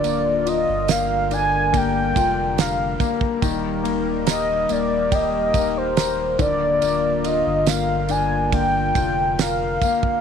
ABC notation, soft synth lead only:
X:1
M:4/4
L:1/16
Q:1/4=71
K:Bbmix
V:1 name="Soft synth lead"
d2 e2 f2 a2 g4 f3 z | z4 e2 d2 e3 c3 d2- | d2 e2 f2 a2 g4 f4 |]